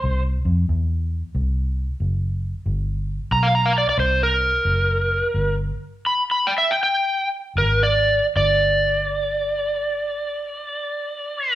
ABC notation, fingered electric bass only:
X:1
M:4/4
L:1/8
Q:"Swing" 1/4=86
K:C
V:1 name="Fingered electric bass" clef=bass
C,, F,, E,,2 C,,2 ^F,,,2 | G,,,2 B,,,2 C,,2 ^F,,,2 | G,,, z4 z _A,,,2 | G,,,8 |]